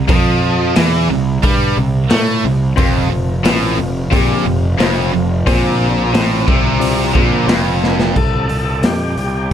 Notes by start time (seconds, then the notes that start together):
0.08 F2 F3, kick, open hi-hat
0.76 E2 E3, snare, open hi-hat
1.10 C2 C3
1.43 G2 G3, kick, open hi-hat
1.77 C2 C3
2.10 A2 A3, snare, open hi-hat
2.44 C2 C3
2.76 F1 F2 F3 C4 F4 C5, kick, open hi-hat
3.10 F1 F2
3.44 A1 A2 C4 F4 B4, snare, open hi-hat
3.78 F1 F2
4.11 A#1 A#2 C4 F4 G4, kick, open hi-hat
4.45 F1 F2
4.79 F1 F2 C4 F4 C5, snare, open hi-hat
5.13 F1 F2
5.47 A#1 A#2 F3 C4 F4 C5, kick, open hi-hat
6.13 A1 A2 C4 F4 C5, snare, open hi-hat
6.47 C2 C3, kick
6.80 C4 F4 D5, open hi-hat
7.14 A#1 A#2, kick
7.47 F1 F2 C4 F4 C5, snare, open hi-hat
7.84 snare
7.99 snare
8.16 C2 A4, kick, crash
8.49 C2, open hi-hat
8.82 F2 G4, snare, open hi-hat
9.16 C2, open hi-hat